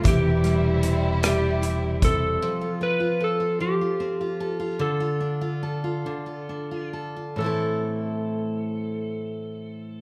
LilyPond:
<<
  \new Staff \with { instrumentName = "Electric slide guitar" } { \time 6/8 \key a \minor \tempo 4. = 49 g'4. g'4 a'8~ | a'8 b'8 a'8 g'4. | a'2~ a'8 r8 | a'2. | }
  \new Staff \with { instrumentName = "Steel-string acoustic guitar" } { \time 6/8 \key a \minor <e e'>8 g8 c'8 g8 e'8 c'8 | f16 f'16 c'16 f'16 a'16 f'16 f16 f'16 c'16 f'16 a'16 f'16 | d16 f'16 d'16 f'16 a'16 f'16 d16 f'16 d'16 f'16 a'16 f'16 | <a, e a c' e' a'>2. | }
  \new Staff \with { instrumentName = "String section" } { \clef bass \time 6/8 \key a \minor <c e g e'>2. | r2. | r2. | r2. | }
  \new Staff \with { instrumentName = "Fretless electric bass" } { \clef bass \time 6/8 \key a \minor e,,2. | r2. | r2. | r2. | }
  \new DrumStaff \with { instrumentName = "Drums" } \drummode { \time 6/8 <hh bd>8 <hh ss>8 hh8 <hh ss>8 hh8 <hh bd>8 | r4. r4. | r4. r4. | r4. r4. | }
>>